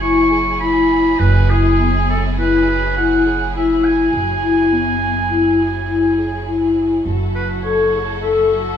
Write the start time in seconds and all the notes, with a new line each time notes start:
Already playing: F#1 F#3 E4 G#4
0.02 E4 C#6
0.31 G#4
0.60 E4 B5
1.19 F#1 F#4 B4
1.49 E4 G#4
1.78 B3
2.10 A4
2.38 E4 B4
2.97 E4 F#5
3.55 E4 E5
3.84 G#5
4.13 F#1 F#4
4.43 E4
4.72 B3
5.30 E4
5.59 F#4
5.88 E4
6.47 E4
7.05 F#1 F#3 E4 F#4 A4
7.35 B4
7.63 A4 C#5
8.23 A4 E5
8.52 F#4